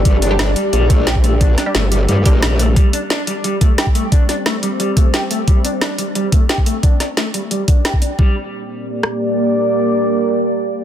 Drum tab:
HH |x-x-x-x-x-x-x-x-|x-x-x-x-x-x-x-x-|x-x-x-x-x-x-x-x-|x-x-x-x-x-x-x-x-|
SD |----o-------o---|--o-o-------o---|----o-------o---|--o-o-------o---|
BD |o---------o--o--|o---------o-----|o---------o--o--|o---------o-----|

HH |x-x-x-x-x-x-x-x-|x-x-x-x-x-x-x-x-|----------------|----------------|
SD |----o-------o---|--o-o-------o---|----------r-----|----------------|
BD |o---------o--o--|o---------o--o--|o---------------|----------------|